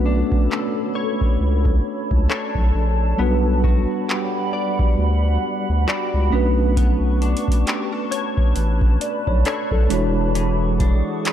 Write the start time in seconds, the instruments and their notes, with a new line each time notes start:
Already playing: sub bass B1, tine electric piano A3 C#4 D4 F#4 B4 F#5, clean electric guitar B3 F#4, ambient pad A4 C#5 B5
0.06 clean electric guitar D4
0.32 kick
0.50 clean electric guitar A4, clap
0.95 clean electric guitar C#5
1.21 kick
1.40 sub bass C#2, ambient pad A5
1.65 kick
2.11 sub bass C#2, kick
2.29 clean electric guitar D4 A4 C#5, clap
2.55 sub bass B1, kick
2.75 sub bass A#1
3.17 sub bass B1, tine electric piano G3 B3 D4 F#4, ambient pad G3 F#5 B5, clean electric guitar B3
3.22 tine electric piano B4
3.64 clean electric guitar F#4, kick
4.09 clean electric guitar G4, clap
4.53 clean electric guitar D5
4.79 kick
4.98 sub bass D2
5.69 sub bass D2
5.88 clean electric guitar F#4 G4 D5, clap
6.14 sub bass C#2
6.30 sub bass B1, tine electric piano A3 C#4 D4 F#4, clean electric guitar B3, ambient pad B4 A5 C#6
6.35 tine electric piano B4
6.77 clean electric guitar B3, kick, closed hi-hat
7.22 clean electric guitar D4, closed hi-hat
7.37 closed hi-hat
7.48 kick, closed hi-hat
7.67 clean electric guitar G4, clap, closed hi-hat
7.92 clean electric guitar A4
8.11 clean electric guitar C#5, ambient pad B5, closed hi-hat
8.38 kick
8.56 sub bass A1, closed hi-hat
8.81 kick
9.01 tine electric piano D5, closed hi-hat
9.27 sub bass B1, tine electric piano C#5, kick
9.45 clean electric guitar D4 A4 C#5, clap, closed hi-hat
9.71 sub bass B1, tine electric piano A4, kick
9.89 sub bass E1, clean electric guitar E3, tine electric piano G#3 D4 E4 F#4, ambient pad G#4 F#5 C#6, closed hi-hat
9.94 tine electric piano C#5
10.35 clean electric guitar E3, closed hi-hat
10.80 clean electric guitar D4, kick, closed hi-hat
11.25 clean electric guitar G#4, clap, closed hi-hat